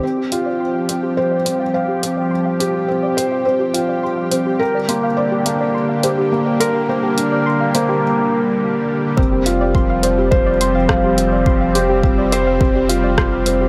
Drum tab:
HH |-x-x-x-x|-x-x-x-x|-x-x-x-x|-x-x----|
SD |--------|--------|--------|--------|
BD |--------|--------|--------|--------|

HH |-x-x-x-x|-x-x-x-x|
SD |------r-|------r-|
BD |o-o-o-o-|o-o-o-o-|